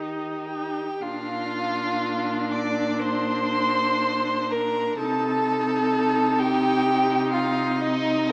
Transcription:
Already playing: cello D#3, viola D#4, violin G4 D#5
0.49 violin G4 G5
1.01 cello A#2, viola D4, violin F4 F5
2.52 violin D5 D6
3.02 violin C5 C6
4.51 violin A#4 A#5
4.98 cello C3, viola D#4, violin A4 A5
6.39 violin G4 G5
7.33 violin F4 F5
7.82 violin D#4 D#5
8.28 violin A#5

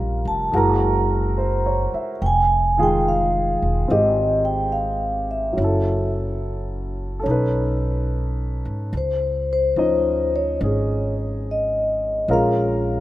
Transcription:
Already playing: upright bass A#1, upright piano G3 C#4 F4 A#4, vibraphone F5
0.25 upright bass F1, vibraphone A5
0.51 upright bass F#1, upright piano G#3 E4 F#4
0.56 upright piano A#4, vibraphone A#5
1.38 upright piano C5
1.66 upright piano C#5
1.94 upright piano E5, muted upright bass stroke
2.22 upright bass F1, vibraphone G5
2.26 vibraphone G#5
2.78 upright piano D#3 G#3 F4 G#4
2.83 vibraphone G5
3.08 vibraphone F5
3.62 upright bass E1
3.88 upright bass G#1, upright piano C4 G4, vibraphone D#5
4.45 vibraphone G5
4.72 vibraphone F5
5.31 vibraphone E5
5.53 upright piano F#3 C#4
5.58 upright bass F#1, upright piano E4
5.64 upright piano A4
7.20 upright piano C#4 A4
7.26 upright bass B1, upright piano D#4
7.31 upright piano B4
8.65 upright bass G#2
8.93 upright bass C#2
8.97 vibraphone C5
9.53 vibraphone C5
9.76 upright bass D2, upright piano F3 C#4 D#4 D#5
10.36 vibraphone C#5
10.61 upright bass G#1, upright piano C#4 G#4
11.51 vibraphone D#5
12.28 upright bass A#1, upright piano G#3 C#4 F4 A#4
12.33 vibraphone F5

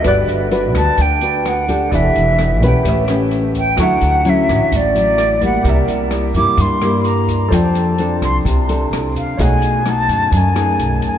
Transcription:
0.02 upright bass G1, nylon-string guitar G3 D4 F#4 B4, grand piano A4 B4, kick, cross-stick, closed hi-hat
0.06 flute D5, grand piano D5 F#6
0.28 upright bass G1, closed hi-hat
0.51 nylon-string guitar D4 F#4 B4, closed hi-hat
0.75 upright bass D2, flute A5, kick, cross-stick, closed hi-hat
0.98 upright bass D2, nylon-string guitar D3, flute G5, kick, closed hi-hat
1.21 nylon-string guitar D4 F#4 B4, closed hi-hat
1.46 flute F#5, cross-stick, closed hi-hat
1.69 nylon-string guitar D4 G4 A4, kick, closed hi-hat
1.89 upright bass E1, nylon-string guitar E3, grand piano G4 A4 D5, kick, closed hi-hat
1.95 flute E5, grand piano F#5
2.15 upright bass E1, closed hi-hat
2.39 cross-stick, closed hi-hat
2.62 upright bass B1, nylon-string guitar C#4 G4 B4, flute G5, kick, closed hi-hat
2.83 upright bass A1, nylon-string guitar A3, grand piano G4 B4, kick, closed hi-hat
2.87 grand piano C#5 E5
3.08 nylon-string guitar C#4 G4 B4, cross-stick, closed hi-hat
3.31 closed hi-hat
3.55 flute G5, kick, closed hi-hat
3.76 upright bass D2, nylon-string guitar D3 F#3 C#4, grand piano F#4 A4 C#6, kick, cross-stick, closed hi-hat
3.80 nylon-string guitar E4, grand piano E5, flute F#5
4.01 upright bass D2, closed hi-hat
4.25 nylon-string guitar F#3 C#4 E4, flute E5, closed hi-hat
4.48 upright bass A1, kick, cross-stick, closed hi-hat
4.72 upright bass A1, nylon-string guitar A2, kick, closed hi-hat
4.76 flute D5
4.95 nylon-string guitar F#3 E4, closed hi-hat
5.18 cross-stick, closed hi-hat
5.41 nylon-string guitar G3 A#3 E4, flute F#5, kick, closed hi-hat
5.63 upright bass C2, nylon-string guitar C3, grand piano G4 A#4, kick, closed hi-hat
5.67 grand piano D5 E5
5.88 upright bass C2, closed hi-hat
6.11 cross-stick, closed hi-hat
6.34 upright bass G2, nylon-string guitar G3 A#3 E4, flute D6, kick, closed hi-hat
6.58 upright bass G2, nylon-string guitar G2, flute C6, kick, closed hi-hat
6.82 nylon-string guitar G3 A#3 E4, cross-stick, closed hi-hat
7.05 flute A#5, closed hi-hat
7.28 kick, closed hi-hat
7.49 upright bass F2, nylon-string guitar F3 C4 D4 A4, grand piano A4 C5 D5, kick, cross-stick, closed hi-hat
7.54 grand piano G5, flute A5
7.75 closed hi-hat
7.98 nylon-string guitar C4 D4 A4, closed hi-hat
8.22 upright bass C2, flute C6, kick, cross-stick, closed hi-hat
8.45 upright bass C2, nylon-string guitar C3, kick, closed hi-hat
8.69 nylon-string guitar C4 D4 A4, closed hi-hat
8.91 upright bass C2, cross-stick, closed hi-hat
9.15 flute F5, kick, closed hi-hat
9.37 upright bass B1, nylon-string guitar B2 A3 D#4 G#4, grand piano C#5 D#5 F#5, kick, closed hi-hat
9.42 flute G#5
9.62 closed hi-hat
9.86 nylon-string guitar A3 D#4, cross-stick, closed hi-hat
9.90 flute A5
10.09 upright bass F#2, kick, closed hi-hat
10.31 nylon-string guitar F#2, upright bass F#2, kick, closed hi-hat
10.36 flute G#5
10.55 nylon-string guitar A3 D#4 G#4, cross-stick, closed hi-hat
10.79 upright bass B1, closed hi-hat
11.02 kick, closed hi-hat
11.06 flute G#5

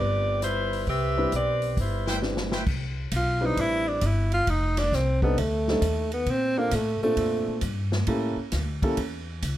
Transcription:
Already playing: upright bass G1, saxophone section C4 G4 B4 D5
0.42 saxophone section G3 E4 B4 C5, cross-stick, closed hi-hat
0.73 open hi-hat
0.87 upright bass C2, saxophone section C4 G4 B4 E5, kick, open hi-hat
1.17 grand piano G3 C4 D4 E4 B4
1.32 upright bass B1, saxophone section C4 G4 B4 D5, closed hi-hat
1.62 open hi-hat
1.77 upright bass G1, saxophone section G3 E4 B4 C5, kick, open hi-hat
2.06 trumpet section E4 B4 C5 G5, snare
2.22 grand piano G3 C4 D4 E4 B4, snare
2.37 snare
2.52 trumpet section E4 B4 C5 G5, snare
2.67 upright bass C2, kick, crash
3.11 upright bass B1, kick, hi-hat pedal, ride
3.16 tenor saxophone F4
3.41 grand piano G3 C4 D4 E4 B4
3.45 tenor saxophone D#4
3.57 upright bass A1, tenor saxophone E4, kick, ride
3.88 tenor saxophone D4
4.01 upright bass G1, kick, hi-hat pedal, ride
4.06 tenor saxophone E4
4.32 tenor saxophone F4, ride
4.47 upright bass F1, tenor saxophone D#4, kick, ride
4.77 tenor saxophone D4, snare, ride
4.92 upright bass C2, tenor saxophone C4, kick, snare, hi-hat pedal
5.22 grand piano G3 C4 D4 D#4 A4, tenor saxophone B3, kick
5.37 upright bass D2, tenor saxophone A3, kick, ride
5.68 grand piano G3 C4 D4 D#4 A4, snare
5.82 upright bass D#2, kick, hi-hat pedal, ride
6.12 tenor saxophone B3, ride
6.26 upright bass A#2, kick, ride
6.31 tenor saxophone C4
6.57 grand piano A#3 C4 D4 F4 A4, tenor saxophone A#3
6.71 upright bass A2, kick, hi-hat pedal, ride
6.75 tenor saxophone A3
7.01 grand piano A#2 C4 D4 F4 A4, tenor saxophone A3, muted upright bass stroke
7.17 upright bass F2, kick, ride
7.47 muted upright bass stroke
7.61 upright bass G2, kick, hi-hat pedal, ride
7.92 snare
8.07 upright bass A2, grand piano A#3 C#4 E4 G4 A4, kick, ride
8.36 muted upright bass stroke
8.52 upright bass D2, kick, snare, hi-hat pedal, ride
8.82 grand piano A#3 C#4 E4 G4 A4, kick, ride
8.97 upright bass E2, kick, ride
9.42 upright bass C#2, kick, hi-hat pedal, ride

